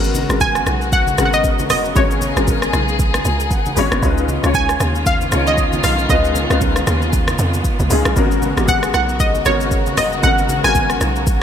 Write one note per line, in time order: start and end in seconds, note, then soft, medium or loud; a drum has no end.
0.00 0.26 G#1 loud
0.00 3.99 C#3 medium
0.00 0.20 G#3 medium
0.00 0.21 B3 medium
0.00 11.43 B3 medium
0.00 0.21 C#4 medium
0.00 0.21 F#4 medium
0.00 1.94 F#4 medium
0.00 0.22 A#4 loud
0.00 3.99 A#4 medium
0.00 shaker medium
0.15 high conga medium
0.15 shaker medium
0.29 0.63 G#1 medium
0.29 1.01 G#3 medium
0.29 1.01 B3 medium
0.29 1.01 C#4 medium
0.29 1.02 F#4 medium
0.29 1.02 A#4 medium
0.29 cross-stick medium
0.29 shaker medium
0.40 0.94 G#5 loud
0.40 kick loud
0.40 low conga medium
0.40 shaker medium
0.55 cross-stick medium
0.55 shaker medium
0.66 1.14 B1 medium
0.66 cross-stick medium
0.66 high conga medium
0.66 shaker medium
0.81 shaker soft
0.92 1.24 F#5 loud
0.92 kick loud
0.92 shaker medium
1.07 high conga medium
1.07 shaker medium
1.17 1.71 G#1 medium
1.17 1.81 G#3 medium
1.17 1.82 B3 medium
1.17 1.82 C#4 medium
1.17 1.82 F#4 medium
1.17 1.83 A#4 medium
1.17 cross-stick medium
1.17 high conga medium
1.17 shaker loud
1.25 1.33 F#5 medium
1.33 1.68 D#5 loud
1.33 shaker medium
1.44 kick medium
1.44 shaker medium
1.59 high conga medium
1.59 shaker medium
1.70 1.93 F#1 medium
1.70 1.94 D#5 medium
1.70 cross-stick medium
1.70 open hi-hat medium
1.70 high conga medium
1.70 low conga medium
1.70 shaker loud
1.85 shaker soft
1.95 2.33 G#1 loud
1.95 2.27 G#3 medium
1.95 2.27 B3 medium
1.95 2.28 C#4 medium
1.95 2.28 F#4 medium
1.95 4.01 G#4 medium
1.95 2.70 C#5 medium
1.95 2.28 C#5 medium
1.95 kick loud
1.95 low conga medium
1.95 shaker medium
2.11 shaker medium
2.21 high conga medium
2.21 shaker medium
2.36 2.70 G#1 loud
2.36 3.18 G#3 medium
2.36 3.18 B3 medium
2.36 3.19 C#4 medium
2.36 3.19 F#4 medium
2.36 3.19 A#4 medium
2.36 cross-stick medium
2.36 shaker medium
2.47 kick loud
2.47 low conga medium
2.47 shaker medium
2.62 cross-stick medium
2.62 shaker medium
2.73 3.21 B1 medium
2.73 cross-stick medium
2.73 high conga medium
2.73 shaker medium
2.88 shaker soft
2.99 kick loud
2.99 shaker medium
3.14 cross-stick loud
3.14 high conga medium
3.14 shaker medium
3.25 3.52 C#2 medium
3.25 high conga medium
3.25 shaker loud
3.40 shaker medium
3.51 3.74 G#1 medium
3.51 3.75 F#5 medium
3.51 kick medium
3.51 shaker medium
3.66 high conga medium
3.66 shaker medium
3.76 3.90 G#1 medium
3.76 3.98 G#3 medium
3.76 3.98 B3 medium
3.76 3.98 C#4 medium
3.76 3.99 F#4 medium
3.76 3.99 C#5 loud
3.76 4.01 B5 medium
3.76 open hi-hat medium
3.76 high conga medium
3.76 low conga medium
3.76 shaker loud
3.92 4.02 F#1 loud
3.92 cross-stick loud
3.92 shaker soft
4.02 4.39 C#2 loud
4.02 8.12 D#3 medium
4.02 4.34 G#3 loud
4.02 4.34 C#4 medium
4.02 8.12 C#4 medium
4.02 4.35 D#4 medium
4.02 8.12 F4 medium
4.02 4.35 F4 medium
4.02 4.35 B4 loud
4.02 kick loud
4.02 low conga medium
4.02 shaker medium
4.18 shaker medium
4.29 high conga medium
4.29 shaker medium
4.43 4.77 C#2 loud
4.43 5.15 G#3 medium
4.43 5.15 C#4 medium
4.43 5.15 D#4 medium
4.43 5.16 F4 medium
4.43 5.16 C#5 medium
4.43 cross-stick medium
4.43 shaker medium
4.54 5.03 G#5 loud
4.54 kick loud
4.54 low conga medium
4.54 shaker medium
4.69 cross-stick medium
4.69 shaker medium
4.80 5.28 D#2 medium
4.80 cross-stick medium
4.80 high conga medium
4.80 shaker medium
4.95 shaker soft
5.06 5.48 F5 loud
5.06 kick loud
5.06 shaker medium
5.21 high conga medium
5.21 shaker medium
5.31 5.80 C#2 medium
5.31 5.95 G#3 medium
5.31 5.96 C#4 medium
5.31 5.96 D#4 medium
5.31 5.96 F4 medium
5.31 5.97 C#5 medium
5.31 cross-stick medium
5.31 high conga medium
5.31 shaker loud
5.47 5.81 D#5 loud
5.47 shaker medium
5.58 kick medium
5.58 shaker medium
5.73 high conga medium
5.73 shaker medium
5.84 6.07 B1 loud
5.84 6.10 F5 medium
5.84 cross-stick medium
5.84 open hi-hat medium
5.84 high conga medium
5.84 low conga medium
5.84 shaker loud
5.99 shaker soft
6.09 6.46 C#2 loud
6.09 6.41 G#3 medium
6.09 6.41 C#4 medium
6.09 6.42 D#4 medium
6.09 6.42 F4 medium
6.09 6.42 B4 medium
6.09 6.83 D#5 medium
6.09 kick loud
6.09 low conga medium
6.09 shaker medium
6.25 shaker medium
6.35 high conga medium
6.35 shaker medium
6.49 6.83 C#2 loud
6.49 7.32 G#3 medium
6.49 7.32 C#4 medium
6.49 7.32 D#4 medium
6.49 7.33 F4 medium
6.49 7.33 B4 medium
6.49 cross-stick medium
6.49 shaker medium
6.61 kick loud
6.61 low conga medium
6.61 shaker medium
6.76 cross-stick medium
6.76 shaker medium
6.87 7.35 D#2 loud
6.87 cross-stick medium
6.87 high conga medium
6.87 shaker loud
7.02 shaker soft
7.13 kick loud
7.13 shaker medium
7.28 cross-stick loud
7.28 high conga medium
7.28 shaker medium
7.38 7.62 F2 medium
7.38 high conga medium
7.38 shaker loud
7.54 shaker medium
7.64 kick medium
7.64 shaker medium
7.79 7.89 C#2 medium
7.79 high conga medium
7.79 shaker medium
7.89 8.04 C#2 loud
7.89 8.12 G#3 medium
7.89 8.12 C#4 medium
7.89 8.12 D#4 medium
7.89 8.13 F4 medium
7.89 8.13 G#4 loud
7.89 open hi-hat medium
7.89 high conga medium
7.89 low conga medium
7.89 shaker loud
8.05 8.15 B1 medium
8.05 cross-stick loud
8.05 shaker soft
8.15 8.53 G#1 loud
8.15 11.43 C#3 medium
8.15 8.48 G#3 medium
8.15 8.48 B3 medium
8.15 8.48 C#4 medium
8.15 11.43 F#4 medium
8.15 8.49 F#4 medium
8.15 11.43 A#4 medium
8.15 8.49 A#4 loud
8.15 kick loud
8.15 low conga medium
8.15 shaker medium
8.31 shaker medium
8.42 high conga medium
8.42 shaker medium
8.56 8.90 G#1 medium
8.56 9.28 G#3 medium
8.56 9.29 B3 medium
8.56 9.29 C#4 medium
8.56 9.29 F#4 medium
8.56 8.63 G4 medium
8.56 cross-stick medium
8.56 shaker medium
8.65 9.33 G#4 medium
8.65 8.92 F#5 loud
8.65 kick loud
8.65 low conga medium
8.65 shaker medium
8.83 cross-stick medium
8.83 shaker medium
8.94 9.42 B1 medium
8.94 9.18 F#5 medium
8.94 cross-stick medium
8.94 high conga medium
8.94 shaker loud
9.09 shaker soft
9.20 9.44 D#5 loud
9.20 kick loud
9.20 shaker medium
9.35 high conga medium
9.35 shaker medium
9.45 9.99 G#1 medium
9.45 10.09 G#3 medium
9.45 10.09 B3 medium
9.45 10.10 C#4 medium
9.45 10.10 F#4 medium
9.45 10.10 A#4 medium
9.45 9.99 C#5 loud
9.45 cross-stick medium
9.45 high conga medium
9.45 shaker loud
9.61 shaker medium
9.71 kick medium
9.71 shaker medium
9.86 high conga medium
9.86 shaker medium
9.97 10.21 F#1 loud
9.97 10.22 D#5 medium
9.97 cross-stick loud
9.97 open hi-hat medium
9.97 high conga medium
9.97 low conga medium
9.97 shaker loud
10.12 shaker soft
10.22 10.60 G#1 loud
10.22 10.55 G#3 medium
10.22 10.55 B3 medium
10.22 10.55 C#4 medium
10.22 10.56 F#4 medium
10.22 10.56 A#4 medium
10.22 10.65 F#5 loud
10.22 kick loud
10.22 low conga medium
10.22 shaker medium
10.38 shaker medium
10.49 high conga medium
10.49 shaker medium
10.63 10.97 G#1 loud
10.63 11.43 G#3 medium
10.63 11.43 B3 medium
10.63 11.43 C#4 medium
10.63 11.43 F#4 medium
10.63 11.43 A#4 medium
10.63 11.43 G#5 loud
10.63 cross-stick medium
10.63 shaker medium
10.75 kick loud
10.75 low conga medium
10.75 shaker medium
10.90 cross-stick medium
10.90 shaker medium
11.01 11.43 B1 medium
11.01 cross-stick medium
11.01 high conga medium
11.01 shaker loud
11.16 shaker soft
11.27 kick loud
11.27 shaker medium